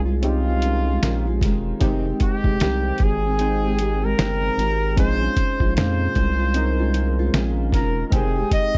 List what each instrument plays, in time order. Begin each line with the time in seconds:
Already playing: analog synth bass C2, synth keys C4 C#4 D#4 G#4
0.05 nylon-string guitar G#3 C#4 F4
0.22 synth keys C4 C#4 D#4 G4, trumpet F4, closed hi-hat
0.47 nylon-string guitar G#3 C#4 F4
0.62 nylon-string guitar D#3 G#3 C#4 F4, closed hi-hat
0.87 nylon-string guitar G#3 C#4 F4
1.02 analog synth bass A#1, nylon-string guitar A#2 D#3 G#3 C#4 F4, snare, closed hi-hat
1.27 nylon-string guitar G#3 C#4 F4
1.41 analog synth bass E1, nylon-string guitar D#3 G#3 C#4, kick, snare, closed hi-hat
1.46 nylon-string guitar F4
1.80 analog synth bass F1, nylon-string guitar F2 C3 D#3 G#3 C4 G4, synth keys G#3 C4 D#4 G4, kick, closed hi-hat
2.06 nylon-string guitar D#3 G#3 C4 G4
2.20 trumpet G4, kick, closed hi-hat
2.44 analog synth bass F1, nylon-string guitar D#3 G#3 C4 G4, kick
2.60 analog synth bass C2, nylon-string guitar F2 C3 D#3 G#3 C4 G4, snare, closed hi-hat
2.98 analog synth bass G#1, nylon-string guitar D#3, kick, closed hi-hat
3.02 nylon-string guitar G#3 C4 G4, trumpet G#4
3.26 nylon-string guitar D#3 G#3 C4
3.39 synth keys G#3 C4 D#4 G5, closed hi-hat
3.63 nylon-string guitar D#3 G#3 C4 G4
3.79 nylon-string guitar D#3 G#3 C4 G4, closed hi-hat
4.02 nylon-string guitar D#3 G#3 C4 G4, trumpet A#4
4.17 analog synth bass G1, nylon-string guitar F2 C3 D#3 G#3 C4 G4, snare, closed hi-hat
4.57 analog synth bass G#1, nylon-string guitar D#3 G#3 C4 G4, snare, closed hi-hat
4.96 analog synth bass A#1, nylon-string guitar A#2 D#3 G#3 C#4 F4, synth keys C4 C#4 D#4 G#4, trumpet C5, kick, closed hi-hat
5.20 nylon-string guitar G#3 C#4 F4
5.37 kick, closed hi-hat
5.60 analog synth bass A#1, nylon-string guitar G#3 C#4 F4, kick
5.76 analog synth bass F2, nylon-string guitar A#2 D#3 G#3 C#4 F4, trumpet C5, snare, closed hi-hat
6.15 analog synth bass C2, nylon-string guitar D#3 G#3 C#4 F4, kick, closed hi-hat
6.39 nylon-string guitar G#3 C#4 F4
6.54 synth keys C4 C#4 D#4 A#4, closed hi-hat
6.79 nylon-string guitar G#3 C#4 F4
6.94 nylon-string guitar D#3 G#3 C#4 F4, closed hi-hat
7.19 nylon-string guitar G#3 C#4 F4
7.33 analog synth bass A#1, nylon-string guitar A#2 D#3 G#3 C#4 F4, snare, closed hi-hat
7.72 analog synth bass E1, nylon-string guitar D#3 G#3 C#4 F4, trumpet A#4, kick, snare, closed hi-hat
8.07 synth keys G#3, trumpet A#4
8.11 analog synth bass F1, nylon-string guitar F2 C3 D#3 G#3 G4, synth keys C4 D#4 G5, trumpet G#4, kick, closed hi-hat
8.15 nylon-string guitar C4
8.36 nylon-string guitar D#3 G#3 C4 G4
8.51 trumpet D#5, kick, closed hi-hat
8.75 kick